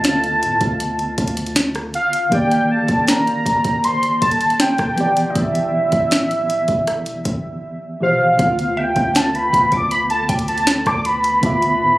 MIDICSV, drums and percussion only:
0, 0, Header, 1, 2, 480
1, 0, Start_track
1, 0, Tempo, 759494
1, 1464, Time_signature, 4, 2, 24, 8
1, 7573, End_track
2, 0, Start_track
2, 0, Title_t, "Drums"
2, 24, Note_on_c, 9, 42, 64
2, 29, Note_on_c, 9, 38, 118
2, 88, Note_off_c, 9, 42, 0
2, 93, Note_off_c, 9, 38, 0
2, 150, Note_on_c, 9, 42, 47
2, 213, Note_off_c, 9, 42, 0
2, 270, Note_on_c, 9, 42, 76
2, 333, Note_off_c, 9, 42, 0
2, 384, Note_on_c, 9, 42, 59
2, 385, Note_on_c, 9, 36, 96
2, 447, Note_off_c, 9, 42, 0
2, 448, Note_off_c, 9, 36, 0
2, 507, Note_on_c, 9, 42, 68
2, 570, Note_off_c, 9, 42, 0
2, 626, Note_on_c, 9, 42, 50
2, 689, Note_off_c, 9, 42, 0
2, 745, Note_on_c, 9, 36, 90
2, 745, Note_on_c, 9, 42, 71
2, 806, Note_off_c, 9, 42, 0
2, 806, Note_on_c, 9, 42, 63
2, 809, Note_off_c, 9, 36, 0
2, 866, Note_off_c, 9, 42, 0
2, 866, Note_on_c, 9, 42, 54
2, 926, Note_off_c, 9, 42, 0
2, 926, Note_on_c, 9, 42, 43
2, 986, Note_off_c, 9, 42, 0
2, 986, Note_on_c, 9, 38, 113
2, 986, Note_on_c, 9, 42, 73
2, 1049, Note_off_c, 9, 38, 0
2, 1049, Note_off_c, 9, 42, 0
2, 1105, Note_on_c, 9, 42, 46
2, 1109, Note_on_c, 9, 37, 89
2, 1168, Note_off_c, 9, 42, 0
2, 1173, Note_off_c, 9, 37, 0
2, 1226, Note_on_c, 9, 42, 46
2, 1226, Note_on_c, 9, 46, 77
2, 1289, Note_off_c, 9, 46, 0
2, 1290, Note_off_c, 9, 42, 0
2, 1347, Note_on_c, 9, 42, 79
2, 1410, Note_off_c, 9, 42, 0
2, 1465, Note_on_c, 9, 36, 113
2, 1466, Note_on_c, 9, 42, 62
2, 1529, Note_off_c, 9, 36, 0
2, 1529, Note_off_c, 9, 42, 0
2, 1589, Note_on_c, 9, 42, 54
2, 1653, Note_off_c, 9, 42, 0
2, 1823, Note_on_c, 9, 42, 51
2, 1825, Note_on_c, 9, 36, 96
2, 1886, Note_off_c, 9, 42, 0
2, 1888, Note_off_c, 9, 36, 0
2, 1944, Note_on_c, 9, 42, 61
2, 1949, Note_on_c, 9, 38, 117
2, 2007, Note_off_c, 9, 42, 0
2, 2012, Note_off_c, 9, 38, 0
2, 2069, Note_on_c, 9, 42, 46
2, 2133, Note_off_c, 9, 42, 0
2, 2185, Note_on_c, 9, 36, 87
2, 2189, Note_on_c, 9, 42, 80
2, 2248, Note_off_c, 9, 36, 0
2, 2252, Note_off_c, 9, 42, 0
2, 2303, Note_on_c, 9, 42, 59
2, 2305, Note_on_c, 9, 36, 94
2, 2367, Note_off_c, 9, 42, 0
2, 2368, Note_off_c, 9, 36, 0
2, 2427, Note_on_c, 9, 42, 74
2, 2490, Note_off_c, 9, 42, 0
2, 2547, Note_on_c, 9, 42, 51
2, 2610, Note_off_c, 9, 42, 0
2, 2666, Note_on_c, 9, 36, 88
2, 2666, Note_on_c, 9, 42, 75
2, 2727, Note_off_c, 9, 42, 0
2, 2727, Note_on_c, 9, 42, 60
2, 2729, Note_off_c, 9, 36, 0
2, 2785, Note_off_c, 9, 42, 0
2, 2785, Note_on_c, 9, 42, 56
2, 2845, Note_off_c, 9, 42, 0
2, 2845, Note_on_c, 9, 42, 45
2, 2905, Note_off_c, 9, 42, 0
2, 2905, Note_on_c, 9, 38, 107
2, 2905, Note_on_c, 9, 42, 78
2, 2969, Note_off_c, 9, 38, 0
2, 2969, Note_off_c, 9, 42, 0
2, 3023, Note_on_c, 9, 42, 45
2, 3026, Note_on_c, 9, 36, 92
2, 3028, Note_on_c, 9, 37, 92
2, 3086, Note_off_c, 9, 42, 0
2, 3089, Note_off_c, 9, 36, 0
2, 3091, Note_off_c, 9, 37, 0
2, 3145, Note_on_c, 9, 42, 46
2, 3145, Note_on_c, 9, 46, 79
2, 3208, Note_off_c, 9, 42, 0
2, 3208, Note_off_c, 9, 46, 0
2, 3265, Note_on_c, 9, 42, 81
2, 3329, Note_off_c, 9, 42, 0
2, 3384, Note_on_c, 9, 42, 67
2, 3385, Note_on_c, 9, 36, 123
2, 3447, Note_off_c, 9, 42, 0
2, 3448, Note_off_c, 9, 36, 0
2, 3508, Note_on_c, 9, 42, 52
2, 3571, Note_off_c, 9, 42, 0
2, 3742, Note_on_c, 9, 42, 48
2, 3744, Note_on_c, 9, 36, 98
2, 3805, Note_off_c, 9, 42, 0
2, 3808, Note_off_c, 9, 36, 0
2, 3863, Note_on_c, 9, 42, 62
2, 3868, Note_on_c, 9, 38, 118
2, 3926, Note_off_c, 9, 42, 0
2, 3931, Note_off_c, 9, 38, 0
2, 3988, Note_on_c, 9, 42, 49
2, 4051, Note_off_c, 9, 42, 0
2, 4107, Note_on_c, 9, 42, 78
2, 4170, Note_off_c, 9, 42, 0
2, 4221, Note_on_c, 9, 42, 57
2, 4224, Note_on_c, 9, 36, 96
2, 4285, Note_off_c, 9, 42, 0
2, 4287, Note_off_c, 9, 36, 0
2, 4345, Note_on_c, 9, 42, 71
2, 4346, Note_on_c, 9, 37, 68
2, 4408, Note_off_c, 9, 42, 0
2, 4409, Note_off_c, 9, 37, 0
2, 4463, Note_on_c, 9, 42, 53
2, 4526, Note_off_c, 9, 42, 0
2, 4584, Note_on_c, 9, 36, 86
2, 4584, Note_on_c, 9, 42, 72
2, 4647, Note_off_c, 9, 36, 0
2, 4647, Note_off_c, 9, 42, 0
2, 5303, Note_on_c, 9, 42, 63
2, 5304, Note_on_c, 9, 36, 113
2, 5366, Note_off_c, 9, 42, 0
2, 5367, Note_off_c, 9, 36, 0
2, 5428, Note_on_c, 9, 42, 50
2, 5491, Note_off_c, 9, 42, 0
2, 5661, Note_on_c, 9, 42, 48
2, 5664, Note_on_c, 9, 36, 100
2, 5725, Note_off_c, 9, 42, 0
2, 5728, Note_off_c, 9, 36, 0
2, 5783, Note_on_c, 9, 42, 63
2, 5788, Note_on_c, 9, 38, 119
2, 5846, Note_off_c, 9, 42, 0
2, 5851, Note_off_c, 9, 38, 0
2, 5909, Note_on_c, 9, 42, 45
2, 5972, Note_off_c, 9, 42, 0
2, 6024, Note_on_c, 9, 36, 89
2, 6029, Note_on_c, 9, 42, 77
2, 6087, Note_off_c, 9, 36, 0
2, 6092, Note_off_c, 9, 42, 0
2, 6142, Note_on_c, 9, 42, 55
2, 6144, Note_on_c, 9, 36, 102
2, 6205, Note_off_c, 9, 42, 0
2, 6208, Note_off_c, 9, 36, 0
2, 6264, Note_on_c, 9, 42, 68
2, 6328, Note_off_c, 9, 42, 0
2, 6384, Note_on_c, 9, 42, 50
2, 6447, Note_off_c, 9, 42, 0
2, 6504, Note_on_c, 9, 42, 73
2, 6505, Note_on_c, 9, 36, 87
2, 6565, Note_off_c, 9, 42, 0
2, 6565, Note_on_c, 9, 42, 64
2, 6568, Note_off_c, 9, 36, 0
2, 6624, Note_off_c, 9, 42, 0
2, 6624, Note_on_c, 9, 42, 52
2, 6684, Note_off_c, 9, 42, 0
2, 6684, Note_on_c, 9, 42, 46
2, 6743, Note_on_c, 9, 38, 112
2, 6744, Note_off_c, 9, 42, 0
2, 6744, Note_on_c, 9, 42, 76
2, 6807, Note_off_c, 9, 38, 0
2, 6807, Note_off_c, 9, 42, 0
2, 6863, Note_on_c, 9, 42, 44
2, 6865, Note_on_c, 9, 36, 83
2, 6868, Note_on_c, 9, 37, 87
2, 6926, Note_off_c, 9, 42, 0
2, 6929, Note_off_c, 9, 36, 0
2, 6931, Note_off_c, 9, 37, 0
2, 6984, Note_on_c, 9, 42, 46
2, 6984, Note_on_c, 9, 46, 80
2, 7047, Note_off_c, 9, 42, 0
2, 7047, Note_off_c, 9, 46, 0
2, 7104, Note_on_c, 9, 42, 77
2, 7168, Note_off_c, 9, 42, 0
2, 7223, Note_on_c, 9, 42, 67
2, 7224, Note_on_c, 9, 36, 113
2, 7286, Note_off_c, 9, 42, 0
2, 7287, Note_off_c, 9, 36, 0
2, 7346, Note_on_c, 9, 42, 54
2, 7410, Note_off_c, 9, 42, 0
2, 7573, End_track
0, 0, End_of_file